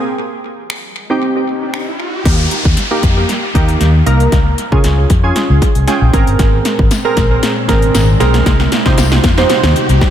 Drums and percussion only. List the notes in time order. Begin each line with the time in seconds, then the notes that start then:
0.70 finger snap
1.74 finger snap
2.25 kick, snare, closed hi-hat, crash
2.51 closed hi-hat
2.65 kick
2.77 snare, closed hi-hat
3.03 kick, closed hi-hat
3.29 snare, closed hi-hat
3.55 kick, closed hi-hat
3.68 closed hi-hat
3.81 snare, closed hi-hat
4.07 closed hi-hat
4.20 closed hi-hat
4.32 kick, snare, closed hi-hat
4.58 closed hi-hat
4.72 kick
4.84 snare, closed hi-hat
5.10 kick, closed hi-hat
5.36 snare, closed hi-hat
5.62 kick, closed hi-hat
5.75 closed hi-hat
5.88 snare, closed hi-hat
6.14 kick, closed hi-hat
6.27 closed hi-hat
6.39 kick, snare, closed hi-hat
6.65 snare, closed hi-hat
6.79 kick
6.91 snare, closed hi-hat, tambourine
7.17 kick, snare, closed hi-hat
7.43 snare, closed hi-hat
7.69 kick, snare, closed hi-hat
7.82 closed hi-hat
7.95 snare, closed hi-hat, tambourine
8.20 snare, closed hi-hat
8.34 snare, closed hi-hat
8.46 kick, snare, closed hi-hat
8.60 snare
8.72 snare, closed hi-hat
8.86 kick, snare
8.98 snare, closed hi-hat, tambourine
9.12 snare
9.24 kick, snare, closed hi-hat
9.38 snare
9.50 snare, closed hi-hat
9.63 snare
9.76 closed hi-hat
9.89 closed hi-hat
10.01 kick, snare